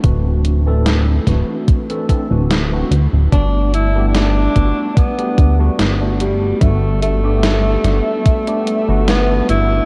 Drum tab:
HH |x-x-x-x-xxx-x-x-|x-x-x-x-xxx-x-x-|x-x-x-x-xxx-x-x-|
SD |----o-o-----o---|----o-------o---|----o-o-----o---|
BD |o-----o-o-o-----|o-----o-o-o-----|o-------o-------|